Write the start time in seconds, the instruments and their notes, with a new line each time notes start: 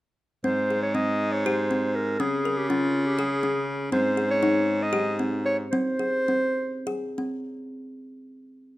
0.44 baritone saxophone G#2, kalimba C4, clarinet C5
0.70 kalimba G#4
0.83 clarinet C#5
0.95 kalimba C4, clarinet D#5
1.32 clarinet C#5
1.46 kalimba G4, clarinet C5
1.71 kalimba C4
1.96 clarinet A#4
2.20 baritone saxophone C#3, kalimba C#4, clarinet G#4
2.45 kalimba A#4
2.57 clarinet G4
2.69 kalimba C#4, clarinet F4
3.06 clarinet G4
3.19 kalimba G#4, clarinet G#4
3.43 kalimba C#4
3.92 baritone saxophone G#2, kalimba C4, clarinet C5
4.17 kalimba G#4
4.31 clarinet C#5
4.43 kalimba D#4
4.83 clarinet D#5
4.93 kalimba G4
5.19 kalimba C4
5.46 clarinet C#5
5.72 kalimba C4, clarinet C5
5.99 kalimba G#4
6.28 kalimba C4
6.87 kalimba G#4
7.18 kalimba C4